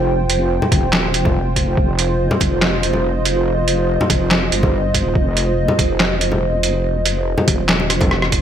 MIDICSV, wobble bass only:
0, 0, Header, 1, 2, 480
1, 0, Start_track
1, 0, Tempo, 422535
1, 97, Time_signature, 4, 2, 24, 8
1, 9561, End_track
2, 0, Start_track
2, 0, Title_t, "Wobble bass"
2, 0, Program_c, 0, 39
2, 0, Note_on_c, 0, 29, 92
2, 686, Note_off_c, 0, 29, 0
2, 815, Note_on_c, 0, 29, 89
2, 1050, Note_off_c, 0, 29, 0
2, 1057, Note_on_c, 0, 27, 97
2, 1297, Note_on_c, 0, 29, 94
2, 1314, Note_off_c, 0, 27, 0
2, 2002, Note_off_c, 0, 29, 0
2, 2015, Note_on_c, 0, 29, 100
2, 2606, Note_off_c, 0, 29, 0
2, 2735, Note_on_c, 0, 29, 90
2, 4526, Note_off_c, 0, 29, 0
2, 4655, Note_on_c, 0, 29, 91
2, 5121, Note_off_c, 0, 29, 0
2, 5136, Note_on_c, 0, 31, 90
2, 5726, Note_off_c, 0, 31, 0
2, 5742, Note_on_c, 0, 27, 101
2, 5847, Note_off_c, 0, 27, 0
2, 5855, Note_on_c, 0, 29, 101
2, 6446, Note_off_c, 0, 29, 0
2, 6575, Note_on_c, 0, 29, 91
2, 8366, Note_off_c, 0, 29, 0
2, 8495, Note_on_c, 0, 29, 91
2, 8728, Note_off_c, 0, 29, 0
2, 8735, Note_on_c, 0, 27, 99
2, 8976, Note_on_c, 0, 29, 98
2, 8993, Note_off_c, 0, 27, 0
2, 9561, Note_off_c, 0, 29, 0
2, 9561, End_track
0, 0, End_of_file